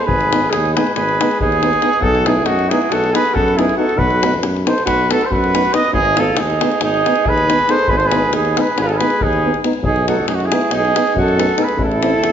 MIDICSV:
0, 0, Header, 1, 7, 480
1, 0, Start_track
1, 0, Tempo, 433526
1, 74, Time_signature, 9, 3, 24, 8
1, 13642, End_track
2, 0, Start_track
2, 0, Title_t, "Trumpet"
2, 0, Program_c, 0, 56
2, 63, Note_on_c, 0, 71, 95
2, 551, Note_on_c, 0, 68, 89
2, 568, Note_off_c, 0, 71, 0
2, 813, Note_off_c, 0, 68, 0
2, 820, Note_on_c, 0, 71, 76
2, 1035, Note_off_c, 0, 71, 0
2, 1059, Note_on_c, 0, 71, 93
2, 1516, Note_off_c, 0, 71, 0
2, 1557, Note_on_c, 0, 68, 98
2, 2239, Note_on_c, 0, 69, 97
2, 2255, Note_off_c, 0, 68, 0
2, 2503, Note_on_c, 0, 68, 82
2, 2520, Note_off_c, 0, 69, 0
2, 2726, Note_on_c, 0, 66, 93
2, 2743, Note_off_c, 0, 68, 0
2, 2988, Note_on_c, 0, 68, 84
2, 3004, Note_off_c, 0, 66, 0
2, 3238, Note_on_c, 0, 69, 94
2, 3254, Note_off_c, 0, 68, 0
2, 3479, Note_off_c, 0, 69, 0
2, 3485, Note_on_c, 0, 71, 103
2, 3700, Note_on_c, 0, 69, 94
2, 3716, Note_off_c, 0, 71, 0
2, 3965, Note_on_c, 0, 68, 85
2, 3982, Note_off_c, 0, 69, 0
2, 4175, Note_off_c, 0, 68, 0
2, 4181, Note_on_c, 0, 69, 92
2, 4403, Note_on_c, 0, 71, 106
2, 4420, Note_off_c, 0, 69, 0
2, 4835, Note_off_c, 0, 71, 0
2, 5163, Note_on_c, 0, 72, 82
2, 5371, Note_off_c, 0, 72, 0
2, 5383, Note_on_c, 0, 71, 94
2, 5656, Note_on_c, 0, 69, 93
2, 5673, Note_off_c, 0, 71, 0
2, 5815, Note_on_c, 0, 72, 62
2, 5832, Note_off_c, 0, 69, 0
2, 5879, Note_on_c, 0, 71, 105
2, 5896, Note_off_c, 0, 72, 0
2, 6352, Note_on_c, 0, 75, 99
2, 6368, Note_off_c, 0, 71, 0
2, 6565, Note_off_c, 0, 75, 0
2, 6571, Note_on_c, 0, 68, 105
2, 6860, Note_on_c, 0, 69, 86
2, 6876, Note_off_c, 0, 68, 0
2, 7079, Note_on_c, 0, 68, 86
2, 7095, Note_off_c, 0, 69, 0
2, 7558, Note_off_c, 0, 68, 0
2, 7564, Note_on_c, 0, 68, 91
2, 8065, Note_on_c, 0, 71, 105
2, 8082, Note_off_c, 0, 68, 0
2, 8532, Note_on_c, 0, 72, 100
2, 8548, Note_off_c, 0, 71, 0
2, 8739, Note_on_c, 0, 71, 92
2, 8756, Note_off_c, 0, 72, 0
2, 8829, Note_on_c, 0, 72, 87
2, 8846, Note_off_c, 0, 71, 0
2, 8931, Note_on_c, 0, 71, 96
2, 8947, Note_off_c, 0, 72, 0
2, 9231, Note_off_c, 0, 71, 0
2, 9253, Note_on_c, 0, 68, 87
2, 9524, Note_on_c, 0, 71, 81
2, 9540, Note_off_c, 0, 68, 0
2, 9727, Note_off_c, 0, 71, 0
2, 9753, Note_on_c, 0, 71, 98
2, 9827, Note_on_c, 0, 69, 75
2, 9843, Note_off_c, 0, 71, 0
2, 9932, Note_on_c, 0, 71, 103
2, 9949, Note_off_c, 0, 69, 0
2, 10216, Note_on_c, 0, 68, 91
2, 10233, Note_off_c, 0, 71, 0
2, 10615, Note_off_c, 0, 68, 0
2, 10906, Note_on_c, 0, 68, 94
2, 11141, Note_off_c, 0, 68, 0
2, 11165, Note_on_c, 0, 69, 74
2, 11366, Note_off_c, 0, 69, 0
2, 11387, Note_on_c, 0, 68, 84
2, 11457, Note_on_c, 0, 66, 75
2, 11474, Note_off_c, 0, 68, 0
2, 11572, Note_on_c, 0, 68, 89
2, 11588, Note_off_c, 0, 66, 0
2, 11875, Note_off_c, 0, 68, 0
2, 11912, Note_on_c, 0, 68, 94
2, 12344, Note_off_c, 0, 68, 0
2, 12404, Note_on_c, 0, 69, 93
2, 12878, Note_on_c, 0, 71, 82
2, 12894, Note_off_c, 0, 69, 0
2, 13067, Note_off_c, 0, 71, 0
2, 13108, Note_on_c, 0, 69, 96
2, 13642, Note_off_c, 0, 69, 0
2, 13642, End_track
3, 0, Start_track
3, 0, Title_t, "Alto saxophone"
3, 0, Program_c, 1, 65
3, 77, Note_on_c, 1, 68, 72
3, 565, Note_on_c, 1, 63, 61
3, 581, Note_off_c, 1, 68, 0
3, 831, Note_off_c, 1, 63, 0
3, 850, Note_on_c, 1, 68, 64
3, 1051, Note_off_c, 1, 68, 0
3, 1060, Note_on_c, 1, 68, 77
3, 1516, Note_off_c, 1, 68, 0
3, 1562, Note_on_c, 1, 63, 79
3, 2223, Note_on_c, 1, 66, 72
3, 2239, Note_off_c, 1, 63, 0
3, 2499, Note_on_c, 1, 64, 63
3, 2515, Note_off_c, 1, 66, 0
3, 2706, Note_on_c, 1, 63, 66
3, 2723, Note_off_c, 1, 64, 0
3, 2973, Note_on_c, 1, 64, 66
3, 2990, Note_off_c, 1, 63, 0
3, 3210, Note_on_c, 1, 66, 82
3, 3227, Note_off_c, 1, 64, 0
3, 3452, Note_off_c, 1, 66, 0
3, 3459, Note_on_c, 1, 68, 75
3, 3696, Note_on_c, 1, 66, 73
3, 3712, Note_off_c, 1, 68, 0
3, 3947, Note_on_c, 1, 64, 73
3, 3963, Note_off_c, 1, 66, 0
3, 4166, Note_off_c, 1, 64, 0
3, 4172, Note_on_c, 1, 66, 73
3, 4370, Note_off_c, 1, 66, 0
3, 4370, Note_on_c, 1, 66, 83
3, 4819, Note_off_c, 1, 66, 0
3, 5148, Note_on_c, 1, 69, 69
3, 5363, Note_off_c, 1, 69, 0
3, 5374, Note_on_c, 1, 66, 94
3, 5651, Note_off_c, 1, 66, 0
3, 5651, Note_on_c, 1, 66, 76
3, 5795, Note_on_c, 1, 69, 53
3, 5811, Note_off_c, 1, 66, 0
3, 5879, Note_on_c, 1, 66, 86
3, 5896, Note_off_c, 1, 69, 0
3, 6349, Note_on_c, 1, 71, 77
3, 6365, Note_off_c, 1, 66, 0
3, 6543, Note_off_c, 1, 71, 0
3, 6549, Note_on_c, 1, 63, 65
3, 6827, Note_on_c, 1, 65, 72
3, 6843, Note_off_c, 1, 63, 0
3, 7061, Note_on_c, 1, 63, 71
3, 7077, Note_off_c, 1, 65, 0
3, 7549, Note_off_c, 1, 63, 0
3, 7563, Note_on_c, 1, 63, 86
3, 8039, Note_on_c, 1, 68, 93
3, 8056, Note_off_c, 1, 63, 0
3, 8518, Note_on_c, 1, 69, 77
3, 8534, Note_off_c, 1, 68, 0
3, 8755, Note_on_c, 1, 68, 82
3, 8771, Note_off_c, 1, 69, 0
3, 8822, Note_on_c, 1, 69, 65
3, 8838, Note_off_c, 1, 68, 0
3, 8906, Note_on_c, 1, 68, 95
3, 8923, Note_off_c, 1, 69, 0
3, 9219, Note_off_c, 1, 68, 0
3, 9227, Note_on_c, 1, 63, 66
3, 9508, Note_on_c, 1, 68, 68
3, 9524, Note_off_c, 1, 63, 0
3, 9710, Note_off_c, 1, 68, 0
3, 9717, Note_on_c, 1, 68, 86
3, 9779, Note_on_c, 1, 65, 74
3, 9796, Note_off_c, 1, 68, 0
3, 9876, Note_on_c, 1, 68, 74
3, 9893, Note_off_c, 1, 65, 0
3, 10215, Note_on_c, 1, 63, 83
3, 10231, Note_off_c, 1, 68, 0
3, 10615, Note_off_c, 1, 63, 0
3, 10900, Note_on_c, 1, 63, 73
3, 11138, Note_off_c, 1, 63, 0
3, 11155, Note_on_c, 1, 66, 73
3, 11360, Note_off_c, 1, 66, 0
3, 11374, Note_on_c, 1, 63, 68
3, 11444, Note_off_c, 1, 63, 0
3, 11444, Note_on_c, 1, 63, 52
3, 11552, Note_on_c, 1, 64, 66
3, 11569, Note_off_c, 1, 63, 0
3, 11865, Note_off_c, 1, 64, 0
3, 11875, Note_on_c, 1, 63, 83
3, 12324, Note_off_c, 1, 63, 0
3, 12375, Note_on_c, 1, 66, 82
3, 12844, Note_on_c, 1, 68, 65
3, 12860, Note_off_c, 1, 66, 0
3, 13045, Note_off_c, 1, 68, 0
3, 13052, Note_on_c, 1, 64, 79
3, 13642, Note_off_c, 1, 64, 0
3, 13642, End_track
4, 0, Start_track
4, 0, Title_t, "Trombone"
4, 0, Program_c, 2, 57
4, 356, Note_on_c, 2, 63, 64
4, 443, Note_off_c, 2, 63, 0
4, 847, Note_on_c, 2, 63, 60
4, 934, Note_off_c, 2, 63, 0
4, 1331, Note_on_c, 2, 63, 62
4, 1420, Note_off_c, 2, 63, 0
4, 1792, Note_on_c, 2, 63, 59
4, 1881, Note_off_c, 2, 63, 0
4, 2021, Note_on_c, 2, 63, 62
4, 2108, Note_off_c, 2, 63, 0
4, 2504, Note_on_c, 2, 63, 58
4, 2594, Note_off_c, 2, 63, 0
4, 3011, Note_on_c, 2, 63, 67
4, 3098, Note_off_c, 2, 63, 0
4, 3472, Note_on_c, 2, 63, 54
4, 3566, Note_off_c, 2, 63, 0
4, 3960, Note_on_c, 2, 63, 51
4, 4048, Note_off_c, 2, 63, 0
4, 4184, Note_on_c, 2, 63, 56
4, 4272, Note_off_c, 2, 63, 0
4, 4679, Note_on_c, 2, 63, 52
4, 4767, Note_off_c, 2, 63, 0
4, 5167, Note_on_c, 2, 63, 58
4, 5256, Note_off_c, 2, 63, 0
4, 5671, Note_on_c, 2, 63, 44
4, 5758, Note_off_c, 2, 63, 0
4, 6145, Note_on_c, 2, 63, 44
4, 6229, Note_off_c, 2, 63, 0
4, 6350, Note_on_c, 2, 63, 43
4, 6437, Note_off_c, 2, 63, 0
4, 6822, Note_on_c, 2, 63, 56
4, 6914, Note_off_c, 2, 63, 0
4, 7312, Note_on_c, 2, 63, 55
4, 7404, Note_off_c, 2, 63, 0
4, 7803, Note_on_c, 2, 63, 49
4, 7895, Note_off_c, 2, 63, 0
4, 8288, Note_on_c, 2, 63, 62
4, 8375, Note_off_c, 2, 63, 0
4, 8509, Note_on_c, 2, 63, 62
4, 8596, Note_off_c, 2, 63, 0
4, 9009, Note_on_c, 2, 63, 63
4, 9095, Note_off_c, 2, 63, 0
4, 9502, Note_on_c, 2, 63, 64
4, 9588, Note_off_c, 2, 63, 0
4, 9987, Note_on_c, 2, 63, 50
4, 10074, Note_off_c, 2, 63, 0
4, 10468, Note_on_c, 2, 63, 51
4, 10551, Note_off_c, 2, 63, 0
4, 10685, Note_on_c, 2, 63, 62
4, 10768, Note_off_c, 2, 63, 0
4, 11169, Note_on_c, 2, 63, 63
4, 11255, Note_off_c, 2, 63, 0
4, 11640, Note_on_c, 2, 63, 60
4, 11730, Note_off_c, 2, 63, 0
4, 12112, Note_on_c, 2, 63, 57
4, 12205, Note_off_c, 2, 63, 0
4, 12600, Note_on_c, 2, 63, 50
4, 12688, Note_off_c, 2, 63, 0
4, 12808, Note_on_c, 2, 63, 63
4, 12898, Note_off_c, 2, 63, 0
4, 13321, Note_on_c, 2, 64, 52
4, 13407, Note_off_c, 2, 64, 0
4, 13642, End_track
5, 0, Start_track
5, 0, Title_t, "Euphonium"
5, 0, Program_c, 3, 58
5, 370, Note_on_c, 3, 59, 65
5, 454, Note_off_c, 3, 59, 0
5, 855, Note_on_c, 3, 59, 65
5, 941, Note_off_c, 3, 59, 0
5, 1348, Note_on_c, 3, 59, 65
5, 1434, Note_off_c, 3, 59, 0
5, 1806, Note_on_c, 3, 59, 66
5, 1893, Note_off_c, 3, 59, 0
5, 2032, Note_on_c, 3, 59, 61
5, 2118, Note_off_c, 3, 59, 0
5, 2522, Note_on_c, 3, 59, 64
5, 2609, Note_off_c, 3, 59, 0
5, 3014, Note_on_c, 3, 59, 68
5, 3101, Note_off_c, 3, 59, 0
5, 3493, Note_on_c, 3, 59, 55
5, 3582, Note_off_c, 3, 59, 0
5, 3971, Note_on_c, 3, 59, 64
5, 4057, Note_off_c, 3, 59, 0
5, 4186, Note_on_c, 3, 59, 54
5, 4273, Note_off_c, 3, 59, 0
5, 4686, Note_on_c, 3, 59, 62
5, 4773, Note_off_c, 3, 59, 0
5, 5157, Note_on_c, 3, 59, 59
5, 5248, Note_off_c, 3, 59, 0
5, 5661, Note_on_c, 3, 59, 49
5, 5749, Note_off_c, 3, 59, 0
5, 6139, Note_on_c, 3, 59, 53
5, 6224, Note_off_c, 3, 59, 0
5, 6370, Note_on_c, 3, 59, 45
5, 6452, Note_off_c, 3, 59, 0
5, 6847, Note_on_c, 3, 59, 53
5, 6934, Note_off_c, 3, 59, 0
5, 7327, Note_on_c, 3, 59, 59
5, 7416, Note_off_c, 3, 59, 0
5, 7830, Note_on_c, 3, 59, 56
5, 7917, Note_off_c, 3, 59, 0
5, 8304, Note_on_c, 3, 59, 60
5, 8388, Note_off_c, 3, 59, 0
5, 8518, Note_on_c, 3, 59, 59
5, 8603, Note_off_c, 3, 59, 0
5, 8994, Note_on_c, 3, 59, 63
5, 9083, Note_off_c, 3, 59, 0
5, 9486, Note_on_c, 3, 59, 65
5, 9575, Note_off_c, 3, 59, 0
5, 9973, Note_on_c, 3, 59, 58
5, 10063, Note_off_c, 3, 59, 0
5, 10458, Note_on_c, 3, 59, 64
5, 10542, Note_off_c, 3, 59, 0
5, 10673, Note_on_c, 3, 59, 62
5, 10759, Note_off_c, 3, 59, 0
5, 11156, Note_on_c, 3, 59, 65
5, 11245, Note_off_c, 3, 59, 0
5, 11651, Note_on_c, 3, 59, 70
5, 11738, Note_off_c, 3, 59, 0
5, 12141, Note_on_c, 3, 59, 61
5, 12228, Note_off_c, 3, 59, 0
5, 12592, Note_on_c, 3, 59, 65
5, 12681, Note_off_c, 3, 59, 0
5, 12812, Note_on_c, 3, 59, 54
5, 12901, Note_off_c, 3, 59, 0
5, 13314, Note_on_c, 3, 60, 59
5, 13401, Note_off_c, 3, 60, 0
5, 13642, End_track
6, 0, Start_track
6, 0, Title_t, "Tuba"
6, 0, Program_c, 4, 58
6, 75, Note_on_c, 4, 32, 87
6, 576, Note_on_c, 4, 39, 93
6, 592, Note_off_c, 4, 32, 0
6, 844, Note_off_c, 4, 39, 0
6, 1061, Note_on_c, 4, 32, 80
6, 1331, Note_off_c, 4, 32, 0
6, 1547, Note_on_c, 4, 39, 88
6, 1926, Note_off_c, 4, 39, 0
6, 2224, Note_on_c, 4, 35, 101
6, 2725, Note_on_c, 4, 42, 88
6, 2741, Note_off_c, 4, 35, 0
6, 2997, Note_off_c, 4, 42, 0
6, 3213, Note_on_c, 4, 35, 86
6, 3486, Note_off_c, 4, 35, 0
6, 3701, Note_on_c, 4, 42, 84
6, 4083, Note_off_c, 4, 42, 0
6, 4387, Note_on_c, 4, 35, 97
6, 4876, Note_on_c, 4, 42, 82
6, 4893, Note_off_c, 4, 35, 0
6, 5152, Note_off_c, 4, 42, 0
6, 5379, Note_on_c, 4, 35, 88
6, 5651, Note_off_c, 4, 35, 0
6, 5875, Note_on_c, 4, 42, 87
6, 6253, Note_off_c, 4, 42, 0
6, 6554, Note_on_c, 4, 32, 103
6, 7056, Note_on_c, 4, 39, 90
6, 7072, Note_off_c, 4, 32, 0
6, 7326, Note_off_c, 4, 39, 0
6, 7539, Note_on_c, 4, 32, 84
6, 7811, Note_off_c, 4, 32, 0
6, 8038, Note_on_c, 4, 39, 82
6, 8416, Note_off_c, 4, 39, 0
6, 8725, Note_on_c, 4, 32, 97
6, 9208, Note_on_c, 4, 39, 85
6, 9225, Note_off_c, 4, 32, 0
6, 9480, Note_off_c, 4, 39, 0
6, 9696, Note_on_c, 4, 32, 94
6, 9968, Note_off_c, 4, 32, 0
6, 10198, Note_on_c, 4, 39, 88
6, 10574, Note_off_c, 4, 39, 0
6, 10878, Note_on_c, 4, 35, 95
6, 11364, Note_on_c, 4, 42, 84
6, 11381, Note_off_c, 4, 35, 0
6, 11636, Note_off_c, 4, 42, 0
6, 11844, Note_on_c, 4, 35, 90
6, 12119, Note_off_c, 4, 35, 0
6, 12345, Note_on_c, 4, 42, 98
6, 12724, Note_off_c, 4, 42, 0
6, 13027, Note_on_c, 4, 33, 100
6, 13521, Note_on_c, 4, 40, 86
6, 13538, Note_off_c, 4, 33, 0
6, 13642, Note_off_c, 4, 40, 0
6, 13642, End_track
7, 0, Start_track
7, 0, Title_t, "Davul"
7, 96, Note_on_c, 9, 43, 84
7, 207, Note_off_c, 9, 43, 0
7, 228, Note_on_c, 9, 37, 28
7, 339, Note_off_c, 9, 37, 0
7, 361, Note_on_c, 9, 37, 70
7, 471, Note_off_c, 9, 37, 0
7, 583, Note_on_c, 9, 37, 68
7, 694, Note_off_c, 9, 37, 0
7, 724, Note_on_c, 9, 37, 23
7, 835, Note_off_c, 9, 37, 0
7, 849, Note_on_c, 9, 37, 76
7, 960, Note_off_c, 9, 37, 0
7, 961, Note_on_c, 9, 37, 28
7, 1065, Note_off_c, 9, 37, 0
7, 1065, Note_on_c, 9, 37, 61
7, 1175, Note_off_c, 9, 37, 0
7, 1204, Note_on_c, 9, 37, 24
7, 1315, Note_off_c, 9, 37, 0
7, 1337, Note_on_c, 9, 37, 70
7, 1448, Note_off_c, 9, 37, 0
7, 1454, Note_on_c, 9, 37, 24
7, 1555, Note_on_c, 9, 43, 85
7, 1565, Note_off_c, 9, 37, 0
7, 1666, Note_off_c, 9, 43, 0
7, 1684, Note_on_c, 9, 37, 22
7, 1795, Note_off_c, 9, 37, 0
7, 1802, Note_on_c, 9, 37, 52
7, 1913, Note_off_c, 9, 37, 0
7, 1916, Note_on_c, 9, 37, 24
7, 2017, Note_off_c, 9, 37, 0
7, 2017, Note_on_c, 9, 37, 56
7, 2128, Note_off_c, 9, 37, 0
7, 2140, Note_on_c, 9, 37, 23
7, 2241, Note_on_c, 9, 43, 91
7, 2251, Note_off_c, 9, 37, 0
7, 2351, Note_off_c, 9, 43, 0
7, 2378, Note_on_c, 9, 37, 25
7, 2489, Note_off_c, 9, 37, 0
7, 2502, Note_on_c, 9, 37, 71
7, 2613, Note_off_c, 9, 37, 0
7, 2721, Note_on_c, 9, 37, 59
7, 2832, Note_off_c, 9, 37, 0
7, 2866, Note_on_c, 9, 37, 23
7, 2977, Note_off_c, 9, 37, 0
7, 3004, Note_on_c, 9, 37, 63
7, 3115, Note_off_c, 9, 37, 0
7, 3119, Note_on_c, 9, 37, 23
7, 3230, Note_off_c, 9, 37, 0
7, 3231, Note_on_c, 9, 37, 65
7, 3341, Note_off_c, 9, 37, 0
7, 3363, Note_on_c, 9, 37, 24
7, 3474, Note_off_c, 9, 37, 0
7, 3488, Note_on_c, 9, 37, 63
7, 3598, Note_off_c, 9, 37, 0
7, 3602, Note_on_c, 9, 37, 24
7, 3713, Note_off_c, 9, 37, 0
7, 3719, Note_on_c, 9, 43, 87
7, 3830, Note_off_c, 9, 43, 0
7, 3854, Note_on_c, 9, 37, 23
7, 3965, Note_off_c, 9, 37, 0
7, 3971, Note_on_c, 9, 37, 58
7, 4082, Note_off_c, 9, 37, 0
7, 4090, Note_on_c, 9, 37, 22
7, 4200, Note_off_c, 9, 37, 0
7, 4310, Note_on_c, 9, 37, 24
7, 4414, Note_on_c, 9, 43, 83
7, 4420, Note_off_c, 9, 37, 0
7, 4525, Note_off_c, 9, 43, 0
7, 4544, Note_on_c, 9, 37, 23
7, 4655, Note_off_c, 9, 37, 0
7, 4683, Note_on_c, 9, 37, 74
7, 4794, Note_off_c, 9, 37, 0
7, 4796, Note_on_c, 9, 37, 21
7, 4907, Note_off_c, 9, 37, 0
7, 4907, Note_on_c, 9, 37, 64
7, 5018, Note_off_c, 9, 37, 0
7, 5054, Note_on_c, 9, 37, 23
7, 5165, Note_off_c, 9, 37, 0
7, 5170, Note_on_c, 9, 37, 69
7, 5280, Note_off_c, 9, 37, 0
7, 5292, Note_on_c, 9, 37, 27
7, 5393, Note_off_c, 9, 37, 0
7, 5393, Note_on_c, 9, 37, 68
7, 5393, Note_on_c, 9, 43, 61
7, 5504, Note_off_c, 9, 37, 0
7, 5504, Note_off_c, 9, 43, 0
7, 5653, Note_on_c, 9, 37, 72
7, 5764, Note_off_c, 9, 37, 0
7, 5770, Note_on_c, 9, 37, 26
7, 5881, Note_off_c, 9, 37, 0
7, 5884, Note_on_c, 9, 43, 76
7, 5995, Note_off_c, 9, 43, 0
7, 6022, Note_on_c, 9, 37, 25
7, 6133, Note_off_c, 9, 37, 0
7, 6142, Note_on_c, 9, 37, 65
7, 6253, Note_off_c, 9, 37, 0
7, 6253, Note_on_c, 9, 37, 25
7, 6354, Note_off_c, 9, 37, 0
7, 6354, Note_on_c, 9, 37, 65
7, 6465, Note_off_c, 9, 37, 0
7, 6469, Note_on_c, 9, 37, 26
7, 6578, Note_on_c, 9, 43, 85
7, 6580, Note_off_c, 9, 37, 0
7, 6689, Note_off_c, 9, 43, 0
7, 6700, Note_on_c, 9, 37, 23
7, 6811, Note_off_c, 9, 37, 0
7, 6830, Note_on_c, 9, 37, 67
7, 6941, Note_off_c, 9, 37, 0
7, 7048, Note_on_c, 9, 37, 68
7, 7159, Note_off_c, 9, 37, 0
7, 7196, Note_on_c, 9, 37, 27
7, 7307, Note_off_c, 9, 37, 0
7, 7320, Note_on_c, 9, 37, 77
7, 7431, Note_off_c, 9, 37, 0
7, 7435, Note_on_c, 9, 37, 26
7, 7538, Note_off_c, 9, 37, 0
7, 7538, Note_on_c, 9, 37, 70
7, 7649, Note_off_c, 9, 37, 0
7, 7684, Note_on_c, 9, 37, 23
7, 7795, Note_off_c, 9, 37, 0
7, 7818, Note_on_c, 9, 37, 62
7, 7923, Note_off_c, 9, 37, 0
7, 7923, Note_on_c, 9, 37, 29
7, 8033, Note_off_c, 9, 37, 0
7, 8033, Note_on_c, 9, 43, 93
7, 8144, Note_off_c, 9, 43, 0
7, 8167, Note_on_c, 9, 37, 22
7, 8278, Note_off_c, 9, 37, 0
7, 8300, Note_on_c, 9, 37, 63
7, 8403, Note_off_c, 9, 37, 0
7, 8403, Note_on_c, 9, 37, 24
7, 8513, Note_off_c, 9, 37, 0
7, 8514, Note_on_c, 9, 37, 55
7, 8625, Note_off_c, 9, 37, 0
7, 8628, Note_on_c, 9, 37, 26
7, 8723, Note_on_c, 9, 43, 83
7, 8738, Note_off_c, 9, 37, 0
7, 8833, Note_off_c, 9, 43, 0
7, 8856, Note_on_c, 9, 37, 27
7, 8967, Note_off_c, 9, 37, 0
7, 8985, Note_on_c, 9, 37, 70
7, 9096, Note_off_c, 9, 37, 0
7, 9222, Note_on_c, 9, 37, 62
7, 9332, Note_off_c, 9, 37, 0
7, 9355, Note_on_c, 9, 37, 26
7, 9466, Note_off_c, 9, 37, 0
7, 9489, Note_on_c, 9, 37, 71
7, 9599, Note_off_c, 9, 37, 0
7, 9599, Note_on_c, 9, 37, 24
7, 9710, Note_off_c, 9, 37, 0
7, 9718, Note_on_c, 9, 37, 65
7, 9829, Note_off_c, 9, 37, 0
7, 9842, Note_on_c, 9, 37, 25
7, 9953, Note_off_c, 9, 37, 0
7, 9971, Note_on_c, 9, 37, 65
7, 10079, Note_off_c, 9, 37, 0
7, 10079, Note_on_c, 9, 37, 27
7, 10190, Note_off_c, 9, 37, 0
7, 10197, Note_on_c, 9, 43, 83
7, 10308, Note_off_c, 9, 43, 0
7, 10328, Note_on_c, 9, 37, 20
7, 10439, Note_off_c, 9, 37, 0
7, 10564, Note_on_c, 9, 37, 25
7, 10675, Note_off_c, 9, 37, 0
7, 10678, Note_on_c, 9, 37, 56
7, 10776, Note_off_c, 9, 37, 0
7, 10776, Note_on_c, 9, 37, 24
7, 10887, Note_off_c, 9, 37, 0
7, 10893, Note_on_c, 9, 43, 84
7, 11004, Note_off_c, 9, 43, 0
7, 11027, Note_on_c, 9, 37, 24
7, 11138, Note_off_c, 9, 37, 0
7, 11161, Note_on_c, 9, 37, 59
7, 11271, Note_off_c, 9, 37, 0
7, 11382, Note_on_c, 9, 37, 62
7, 11493, Note_off_c, 9, 37, 0
7, 11518, Note_on_c, 9, 37, 23
7, 11628, Note_off_c, 9, 37, 0
7, 11644, Note_on_c, 9, 37, 75
7, 11752, Note_off_c, 9, 37, 0
7, 11752, Note_on_c, 9, 37, 25
7, 11861, Note_off_c, 9, 37, 0
7, 11861, Note_on_c, 9, 37, 63
7, 11972, Note_off_c, 9, 37, 0
7, 12012, Note_on_c, 9, 37, 24
7, 12122, Note_off_c, 9, 37, 0
7, 12135, Note_on_c, 9, 37, 70
7, 12246, Note_off_c, 9, 37, 0
7, 12260, Note_on_c, 9, 37, 25
7, 12362, Note_on_c, 9, 43, 76
7, 12371, Note_off_c, 9, 37, 0
7, 12473, Note_off_c, 9, 43, 0
7, 12493, Note_on_c, 9, 37, 24
7, 12604, Note_off_c, 9, 37, 0
7, 12617, Note_on_c, 9, 37, 69
7, 12723, Note_off_c, 9, 37, 0
7, 12723, Note_on_c, 9, 37, 22
7, 12821, Note_off_c, 9, 37, 0
7, 12821, Note_on_c, 9, 37, 59
7, 12932, Note_off_c, 9, 37, 0
7, 12938, Note_on_c, 9, 37, 28
7, 13049, Note_off_c, 9, 37, 0
7, 13049, Note_on_c, 9, 43, 83
7, 13160, Note_off_c, 9, 43, 0
7, 13193, Note_on_c, 9, 37, 25
7, 13303, Note_off_c, 9, 37, 0
7, 13315, Note_on_c, 9, 37, 63
7, 13426, Note_off_c, 9, 37, 0
7, 13547, Note_on_c, 9, 37, 62
7, 13642, Note_off_c, 9, 37, 0
7, 13642, End_track
0, 0, End_of_file